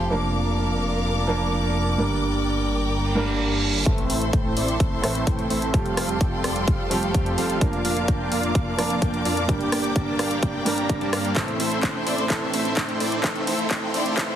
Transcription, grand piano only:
Already playing: F3 A3 C4 G4
0.10 F3 A#3 D4 A#4
1.27 F3 A#3 D4 A#4
1.98 G2 G3 A#3 D4 A#4
3.15 G2 G3 A#3 D4 A#4
3.85 A2 E3 A3 C4 A4
5.02 A2 E3 A3 C4 A4
5.73 F3 A3 C4 G4
6.90 F3 A3 C4 G4
7.60 F3 A#3 D4 A#4
8.77 F3 A#3 D4 A#4
9.48 G2 G3 A#3 D4 A#4
10.65 G2 G3 A#3 D4 A#4
11.35 A2 E3 A3 C4 A4
12.29 A2 E3 A3 C4 A4
13.23 A2 E3 A3 C4 A4
14.16 A2 E3 A3 C4 A4

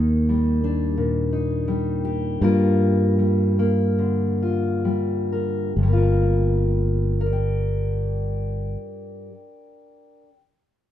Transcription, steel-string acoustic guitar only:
Already playing: D#3 A#3 D#4
0.29 G3
0.64 D4
0.98 A#2
1.33 D#4
1.68 G3
2.05 G4
2.42 G2 G3 A#3 F4 A#4
3.19 G3
3.59 A#3
3.99 D3
4.42 F4
4.85 G3
5.32 A#4
5.78 G2
5.83 G3
5.88 A#3
5.93 F4
5.97 A#4
7.21 A#4
7.26 D5
7.33 G5

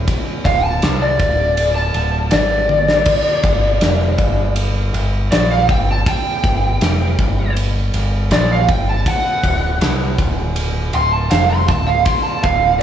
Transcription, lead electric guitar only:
0.45 F5
0.64 A5
1.02 D5
1.76 A5
2.32 D5
5.32 D5
5.51 F5
5.70 G5
5.91 A5
6.09 G5
8.32 D5
8.52 F5
8.70 G5
8.89 A5
9.08 F#5
10.95 C6
11.12 A5
11.31 F5
11.50 C6
11.69 A5
11.87 F5
12.05 C6
12.23 A5
12.43 F5
12.79 D5

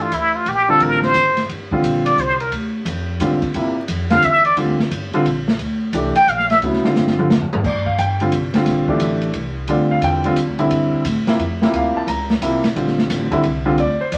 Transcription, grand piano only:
Already playing: D4 G4
0.69 D3 G3 C4 F4
1.72 D3 G3 C4 F4
3.21 D3 G3 C4 F4
3.55 C3 F3 A#3 E4
4.11 D3 G3 C4 F4
4.57 D3 G3 C4 F4
5.14 D3 G3 C4 F4
5.94 E3 A3 D4 G4
6.63 C#3 F#3 B3 E4
6.84 D3 G3 C4 F4
7.19 D3 G3 C4 F4
7.66 D5
7.86 F5
7.99 G5
8.21 D3 G3 C4 F4
8.55 D3 G3 C4 F4
8.88 E3 A3 D4 G4
9.69 D3 G3 C4 F4 D5
9.91 F5
10.04 G5
10.25 D3 G3 C4 F4
10.59 D3 G3 C4 E4
11.27 C3 F3 A#3 E4
11.62 C3 F3 A#3 E4
11.76 F5
11.97 A5
12.08 A#5
12.42 C3 F3 A#3 E4
12.76 D3 G3 C4 F4
13.31 D3 G3 C4 E4
13.66 D3 G3 C4 F4
13.80 D5
14.01 C5
14.14 D5

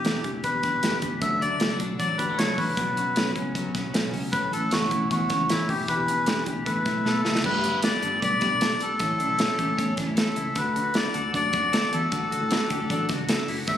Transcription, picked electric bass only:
Already playing: E1
0.24 E1
0.63 E1
0.83 F#1
1.02 G1
1.22 D2
1.60 C#2
1.80 B1
2.00 A1
2.19 D2
2.38 C#2
2.58 A1
2.77 B1
3.07 B1
3.35 C#2
3.75 B1
3.94 B1
4.13 C#2
4.33 A1
4.71 F#1
4.91 E1
5.11 E2
5.30 C#2
5.49 A1
5.69 E1
5.89 E1
6.17 E1
6.47 E1
6.66 A1
6.86 B1
7.05 B1
7.25 C#2
7.44 G1
8.03 G1
8.22 B1
8.42 B1
9.00 A1
9.29 B1
9.59 A1
9.79 E2
9.98 A1
10.37 C#2
10.56 D2
11.15 D2
11.34 F#2
11.54 F#2
11.73 D2
11.92 E2
12.12 D2
12.41 A2
12.71 D2
12.90 A1
13.09 C#2
13.48 F#1
13.68 G1

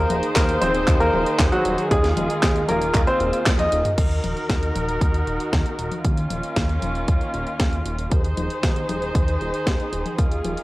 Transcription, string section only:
Already playing: D#3 D#4 G#4 C5
1.91 A#3 F4
3.98 D#3 D#4 F#4 A#4
6.05 D#3 A#3 C#4 F4
8.12 D#3 D#4 G#4 C5
10.19 A#3 F4

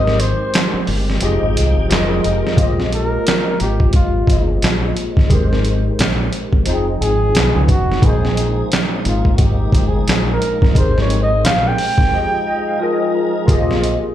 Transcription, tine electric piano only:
Already playing: G#3 D#4 G4 A#4 C5
1.21 F3 F4 G4 G#4 D#5
1.88 F3 F4 G4 G#4 A#4 D#5
2.55 G#3 A#3 F4 G4
2.61 C5 D#5
4.28 A#3 F4 G4 G#4 C5 D#5
5.27 G#3 D#4 G4
5.33 A#4 C5
6.66 F3 C4 D#4 G#4 G5
7.34 B2 A3 C#4 D#4 B4
8.00 A#2 F3 G#3
8.04 D#4 C5 G5
9.72 A#2 F3 G#3 D#4 C5 G5
10.73 G#3 D#4 G4
10.79 A#4 C5
12.11 F3 F4 G4 G#4 D#5
12.47 D#5
12.67 F5
12.80 F3 F4 G#4 A#4 D#5 G5 G#5
13.15 A#5
13.45 A#3 F4 G4
13.50 G#4 C5 D#5

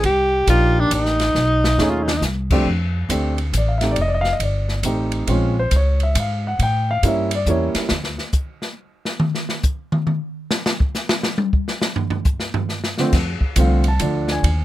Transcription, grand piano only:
0.48 A#3 D4 D#4 G4
1.79 A3 C#4 D#4 G#4
2.52 F2 A3 C4 D4 G4
3.09 A3 C4 D4 G4
3.57 D5
3.68 F5
3.78 A3 E5
3.82 C4 D#4 G4
3.92 D5
4.01 D#5
4.08 D5
4.14 D#5
4.21 F5
4.33 D#5
4.43 D5
4.84 A3 C4 D#4 G4
5.27 G#3 C4 C#4 F4
5.59 C5
5.76 C#5
6.03 E5
6.20 F5
6.47 F#5
6.63 G5
6.91 F5
7.03 G3 A#3 C#4 E4
7.08 E5
7.35 D5
7.48 G3 A#3 C#4 E4 C#5
12.99 D3 F3 A3 C4
13.56 D3 F3 A3 C4 F5
13.88 A5
14.00 D3 F3 A3 D4
14.32 G#5

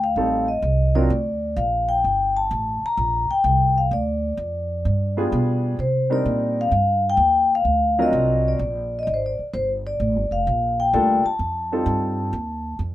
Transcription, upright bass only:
Already playing: D2
0.16 A1
0.62 C2
1.10 D2
1.57 A#1
2.04 G1
2.51 A1
2.83 muted upright bass stroke
2.97 A#1
3.31 muted upright bass stroke
3.44 C2
3.91 D2
4.37 F2
4.85 G2
5.32 B2
5.79 C3
6.26 A#2
6.72 G2
7.17 D#2
7.65 D2
8.13 C2
8.59 A#1
9.07 G#1
9.39 muted upright bass stroke
9.54 G1
10.00 A1
10.16 G1
10.31 F1
10.47 A#1
10.94 D2
11.25 muted upright bass stroke
11.39 F2
11.86 G2
12.33 D#2
12.79 F2

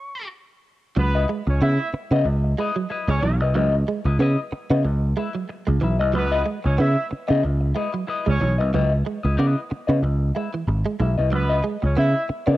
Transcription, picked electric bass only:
0.97 C#2
1.47 C#2
1.62 C#3
1.93 muted picked electric bass stroke
2.11 C#3
2.25 C#2
3.08 C#2
3.22 B1
3.40 C2
3.54 C#2
4.05 C#2
4.19 C#3
4.52 muted picked electric bass stroke
4.70 C#3
4.85 C#2
5.68 C#2
5.82 B1
6.00 C2
6.15 C#2
6.65 C#2
6.80 C#3
7.12 muted picked electric bass stroke
7.30 C#3
7.44 C#2
8.27 C#2
8.41 B1
8.60 C2
8.74 C#2
9.25 C#2
9.39 C#3
9.72 muted picked electric bass stroke
9.89 C#3
10.03 C#2
10.67 G#1
11.00 B1
11.18 C2
11.32 C#2
11.83 C#2
11.98 C#3
12.30 muted picked electric bass stroke
12.48 C#3

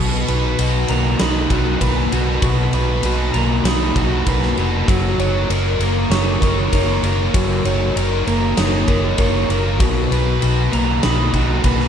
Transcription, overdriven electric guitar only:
Already playing: B2
0.29 B4
0.59 F#4
0.90 A#3
1.20 D#4
1.50 F#4
1.81 B4
2.13 F#4
2.44 B2
2.74 B4
3.06 F#4
3.37 A#3
3.67 D#4
3.98 F#4
4.28 B4
4.59 F#4
4.90 F#3
5.20 C#5
5.50 A#4
5.83 A#3
6.13 D#4
6.44 A#4
6.75 C#5
7.05 A#4
7.36 F#3
7.66 C#5
7.97 A#4
8.28 A#3
8.58 D#4
8.88 A#4
9.18 C#5
9.50 A#4
9.80 B2
10.12 B4
10.43 F#4
10.72 A#3
11.04 D#4
11.34 F#4
11.65 B4

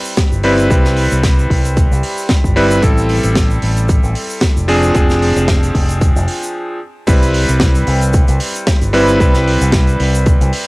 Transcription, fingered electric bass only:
0.32 G1
0.71 C2
1.12 C2
1.50 C2
1.91 C2
2.44 G1
2.83 A1
3.24 A1
3.62 A1
4.03 A1
4.56 F1
4.95 F1
5.36 F1
5.75 F1
6.16 F1
7.08 C2
7.49 C2
7.87 C2
8.28 C2
8.81 G1
9.20 C2
9.61 C2
10.00 C2
10.41 C2

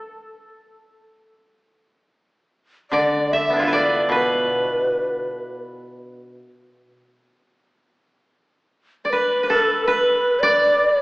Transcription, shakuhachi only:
2.91 D5
3.32 E5
3.73 D5
4.13 B4
9.05 D5
9.10 B4
9.48 A4
9.85 B4
10.40 D5

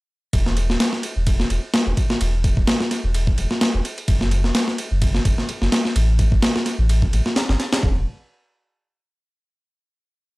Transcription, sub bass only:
0.33 E1
0.70 D1
1.16 E1
1.50 E1
1.87 E1
2.21 E1
2.57 D1
3.04 E1
3.38 E1
3.74 E1
4.08 F#1
4.45 E1
4.91 F#1
5.25 F#1
5.62 F#1
5.96 A1
6.32 G1
6.79 A1
7.13 A1
7.49 G1
7.83 E1

